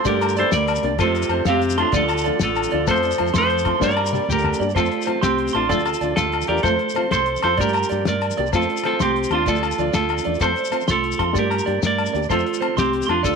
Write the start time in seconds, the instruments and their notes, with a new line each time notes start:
0.04 fingered electric bass G2, tenor saxophone D3, nylon-string guitar D4 G4, clean electric guitar G4 A#4 D5, muted nylon-string guitar stroke, kick, closed hi-hat, high conga, shekere
0.12 low conga
0.21 clean electric guitar A#5, closed hi-hat, low agogo, shekere
0.29 shekere
0.36 tenor saxophone E3, nylon-string guitar A#3 D4 G4, clean electric guitar A4 C5 D5, closed hi-hat, shekere
0.44 low conga
0.52 fingered electric bass D2, tenor saxophone G3, clean electric guitar A#4 D5, snare, closed hi-hat, high conga, shekere
0.60 low conga
0.68 closed hi-hat, low agogo, shekere
0.75 low conga, shekere
0.83 fingered electric bass C2, nylon-string guitar A#3 D4 G4, clean electric guitar D5, closed hi-hat, low conga
0.99 fingered electric bass F2, tenor saxophone C3, nylon-string guitar A3 C4, clean electric guitar F4 A4 C5, muted nylon-string guitar stroke, kick, closed hi-hat, high conga, low conga, low agogo, shekere
1.08 low conga
1.15 closed hi-hat, low conga, shekere
1.22 low conga, shekere
1.29 fingered electric bass F2, nylon-string guitar A3 C4, clean electric guitar C5, closed hi-hat, low agogo
1.33 muted nylon-string guitar stroke
1.39 low conga
1.45 fingered electric bass F2, clean electric guitar C4 F5, snare, closed hi-hat, high conga, shekere
1.49 tenor saxophone C3, clean electric guitar G4
1.55 low conga
1.61 closed hi-hat, shekere
1.70 low conga, shekere
1.77 tenor saxophone A2, nylon-string guitar A3 C4, clean electric guitar D4 F4 C6, muted nylon-string guitar stroke, closed hi-hat, low conga, low agogo
1.92 fingered electric bass D2, tenor saxophone D3, nylon-string guitar F3 A3 D4 F4, clean electric guitar F4 D5, kick, closed hi-hat, high conga, shekere
1.96 clean electric guitar A4
2.02 low conga
2.08 clean electric guitar A5, closed hi-hat, low agogo, shekere
2.18 shekere
2.24 nylon-string guitar F3 A3 D4 F4, clean electric guitar D5, closed hi-hat
2.33 low conga
2.40 fingered electric bass A1, tenor saxophone D3, clean electric guitar F4, snare, closed hi-hat, high conga, shekere
2.44 clean electric guitar A4
2.49 low conga
2.55 closed hi-hat, low agogo, shekere
2.63 low conga, shekere
2.71 fingered electric bass D2, nylon-string guitar F3 D4 F4, clean electric guitar D5, closed hi-hat, low conga
2.87 fingered electric bass F2, nylon-string guitar F3 A3 C4 F4, tenor saxophone F3, clean electric guitar A4 C5, kick, closed hi-hat, high conga, low conga, low agogo, shekere
2.91 clean electric guitar C5, low conga
2.96 shekere
3.03 closed hi-hat, shekere
3.11 shekere
3.18 fingered electric bass F2, nylon-string guitar F3 A3 F4, clean electric guitar C5, closed hi-hat, low conga, low agogo
3.26 low conga, shekere
3.34 fingered electric bass F2, clean electric guitar A4 C6, snare, closed hi-hat, high conga, shekere
3.38 tenor saxophone F3, clean electric guitar C5
3.50 closed hi-hat
3.58 low conga, shekere
3.65 nylon-string guitar F3 A3 C4 F4, clean electric guitar C6, kick, closed hi-hat, low agogo
3.74 low conga
3.80 fingered electric bass G2, nylon-string guitar A#3 D4 G4, clean electric guitar A#4 D5, kick, snare, high conga, shekere
3.85 tenor saxophone G3
3.90 low conga, shekere
3.97 clean electric guitar A#5, low agogo
4.06 shekere
4.12 nylon-string guitar A#3 D4 G4, clean electric guitar D5, high tom, low conga, shekere
4.21 low conga
4.28 fingered electric bass D2, clean electric guitar G4, mid tom, high conga, low conga, shekere
4.32 tenor saxophone D3, clean electric guitar A#4
4.39 shekere
4.44 mid tom, low agogo
4.52 low conga, shekere
4.59 fingered electric bass G2, nylon-string guitar A#3 D4 G4, clean electric guitar D5, low conga, shekere
4.70 shekere
4.75 fingered electric bass F2, nylon-string guitar A3 C4 F4, clean electric guitar F4 A4 C5, kick, crash, high conga, low conga, low agogo, shekere
4.83 low conga, shekere
4.91 closed hi-hat
5.00 low conga, shekere
5.06 nylon-string guitar A3 C4 F4, clean electric guitar C5, closed hi-hat, low agogo
5.15 low conga
5.21 fingered electric bass C2, clean electric guitar C4 G4 C6, snare, closed hi-hat, high conga, shekere
5.38 closed hi-hat
5.46 low conga, shekere
5.53 fingered electric bass A1, nylon-string guitar A3 C4 F4, clean electric guitar D4 F4 C6, closed hi-hat, low agogo
5.69 fingered electric bass D2, nylon-string guitar F3 A3 D4 F4, clean electric guitar F4 A4 D5, kick, closed hi-hat, high conga, shekere
5.78 low conga, shekere
5.85 clean electric guitar A5, closed hi-hat, low agogo, shekere
5.94 shekere
6.01 fingered electric bass D2, nylon-string guitar A3 D4 F4, clean electric guitar D5, muted nylon-string guitar stroke, closed hi-hat, shekere
6.11 low conga
6.16 fingered electric bass D2, clean electric guitar F4 A4, snare, closed hi-hat, high conga, shekere
6.32 closed hi-hat, low conga, low agogo
6.42 low conga, shekere
6.47 fingered electric bass E2, nylon-string guitar F3 A3 D4 F4, clean electric guitar G4 A#4 D5, closed hi-hat
6.57 shekere
6.63 fingered electric bass F2, nylon-string guitar A3 F4, clean electric guitar A4 C5, muted nylon-string guitar stroke, kick, closed hi-hat, high conga, low conga, low agogo, shekere
6.72 low conga
6.79 closed hi-hat
6.89 low conga, shekere
6.94 nylon-string guitar A3 C4 F4, clean electric guitar C5, closed hi-hat, low agogo
7.03 low conga
7.11 fingered electric bass C2, clean electric guitar A4 C5 C6, snare, closed hi-hat, high conga, shekere
7.26 closed hi-hat
7.36 low conga, shekere
7.42 fingered electric bass F2, nylon-string guitar C4 F4, clean electric guitar A4 C5 C6, closed hi-hat, low agogo
7.57 fingered electric bass G2, nylon-string guitar D4, clean electric guitar G4 A#4 D5, muted nylon-string guitar stroke, kick, closed hi-hat, high conga, shekere
7.68 low conga, shekere
7.73 clean electric guitar A#5, closed hi-hat, low agogo, shekere
7.83 shekere
7.89 fingered electric bass G2, nylon-string guitar A#3 D4 G4, clean electric guitar D5, closed hi-hat, low conga, shekere
7.99 low conga
8.05 fingered electric bass G2, clean electric guitar A#4 D5, snare, closed hi-hat, high conga, shekere
8.21 closed hi-hat, low conga, low agogo
8.30 low conga, shekere
8.37 fingered electric bass C2, nylon-string guitar A#3 D4 G4, clean electric guitar D5, closed hi-hat
8.46 shekere
8.53 fingered electric bass F2, nylon-string guitar A3 C4 F4, clean electric guitar F4 A4 C5, kick, closed hi-hat, high conga, low conga, low agogo, shekere
8.62 low conga, shekere
8.70 closed hi-hat
8.77 shekere
8.84 nylon-string guitar A3 C4 F4, clean electric guitar F4 A4 C5, closed hi-hat, low agogo
8.93 low conga
9.00 fingered electric bass C2, clean electric guitar C4 G4 C6, snare, closed hi-hat, high conga, shekere
9.16 closed hi-hat
9.24 low conga, shekere
9.30 fingered electric bass D#2, nylon-string guitar A3 C4 F4, clean electric guitar D4 C6, closed hi-hat, low agogo
9.35 clean electric guitar F4
9.46 fingered electric bass D2, nylon-string guitar F3 A3 D4 F4, clean electric guitar F4 A4 D5, kick, closed hi-hat, high conga, shekere
9.55 low conga, shekere
9.63 clean electric guitar A5, closed hi-hat, low agogo, shekere
9.71 shekere
9.78 fingered electric bass D2, nylon-string guitar F3 D4 F4, clean electric guitar D5, muted nylon-string guitar stroke, closed hi-hat, low conga, shekere
9.88 low conga
9.94 fingered electric bass D2, clean electric guitar F4 A4, snare, closed hi-hat, high conga, shekere
10.09 closed hi-hat, low conga, low agogo
10.18 low conga, shekere
10.24 fingered electric bass E2, nylon-string guitar F3 A3 D4, clean electric guitar D5, closed hi-hat
10.35 shekere
10.40 fingered electric bass F2, nylon-string guitar C4 F4, clean electric guitar A4 C5, muted nylon-string guitar stroke, kick, closed hi-hat, high conga, low agogo, shekere
10.50 low conga
10.56 closed hi-hat, shekere
10.65 shekere
10.71 nylon-string guitar A3 C4 F4, clean electric guitar C5, closed hi-hat, low agogo, shekere
10.81 low conga, shekere
10.88 fingered electric bass C2, clean electric guitar F4 A4 C6, snare, closed hi-hat, high conga, shekere
10.97 low conga
11.04 closed hi-hat
11.12 low conga, shekere
11.18 fingered electric bass F2, nylon-string guitar A3 C4 F4, clean electric guitar C6, kick, closed hi-hat, low agogo
11.33 fingered electric bass G2, nylon-string guitar A#3 D4 G4, clean electric guitar D5, kick, closed hi-hat, high conga, low conga, shekere
11.38 clean electric guitar G4 A#4
11.44 low conga
11.50 clean electric guitar A#5, closed hi-hat, low agogo
11.59 shekere
11.65 fingered electric bass G2, nylon-string guitar A#3 D4 G4, clean electric guitar D5, closed hi-hat, low conga
11.75 low conga
11.83 fingered electric bass G2, clean electric guitar A#4 D5, snare, closed hi-hat, high conga, low conga, shekere
11.98 closed hi-hat, low agogo
12.06 low conga, shekere
12.13 fingered electric bass D2, nylon-string guitar A#3 D4 G4, clean electric guitar D5, closed hi-hat, low conga, shekere
12.23 shekere
12.29 fingered electric bass F2, nylon-string guitar A3 C4 F4, clean electric guitar F4 A4 C5, kick, closed hi-hat, high conga, low conga, low agogo, shekere
12.37 low conga, shekere
12.46 closed hi-hat
12.53 low conga, shekere
12.60 nylon-string guitar A3 C4, clean electric guitar C5, closed hi-hat, low agogo
12.68 low conga
12.77 fingered electric bass C2, clean electric guitar C4 G4 C6, snare, closed hi-hat, high conga, shekere
12.93 closed hi-hat
13.01 low conga, shekere
13.07 fingered electric bass F2, nylon-string guitar A3 C4 F4, clean electric guitar D4 C6, closed hi-hat, low agogo
13.11 clean electric guitar F4
13.23 fingered electric bass D2, nylon-string guitar D4 F4, clean electric guitar F4 A4 D5, muted nylon-string guitar stroke, kick, closed hi-hat, high conga, shekere
13.31 low conga